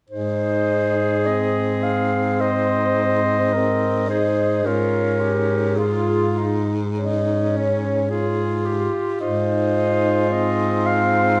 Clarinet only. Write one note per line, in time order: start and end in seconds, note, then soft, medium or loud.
0.09 1.28 C5 medium
1.26 1.85 D#5 soft
1.83 2.42 F5 soft
2.40 4.09 D#5 medium
4.09 4.66 C5 medium
4.65 5.77 A#4 medium
5.76 6.68 G#4 soft
6.98 8.61 C#5 medium
9.21 10.34 C5 medium
10.32 10.88 D#5 medium
10.86 11.40 F5 medium